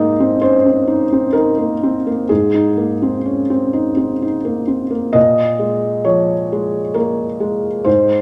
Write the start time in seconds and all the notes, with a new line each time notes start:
Already playing: G#2 A#3 D#4 D#5
0.20 C4
0.41 C#4 C5
0.66 C4
0.87 D#4
1.12 C4
1.33 D#4 A#4
1.58 A#3
1.83 C4
2.07 A#3
2.29 G#2 G#4
2.54 D#4
2.77 A#3
3.02 C4
3.25 C#4
3.50 C4
3.73 D#4
3.97 C4
4.22 D#4
4.45 A#3
4.68 C4
4.90 A#3
5.13 A#2 D#5
5.59 G#3
6.05 F3 C#5
6.52 G#3
6.94 A#3 A#4
7.40 G#3
7.84 G#2 C5